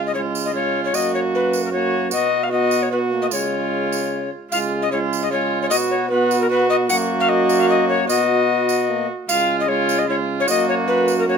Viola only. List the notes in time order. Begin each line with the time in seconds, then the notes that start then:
Already playing: F4
0.15 F4
0.54 F4
0.93 F#4
1.73 F#4
2.12 F#4
2.51 F#4
2.91 F#4
3.31 F4
4.51 F4
4.91 F4
5.31 F4
5.71 F#4
6.11 F#4
6.50 F#4
6.91 F#4
8.09 F#4
9.29 F4
9.69 F4
10.08 F4
10.47 F#4
11.27 F#4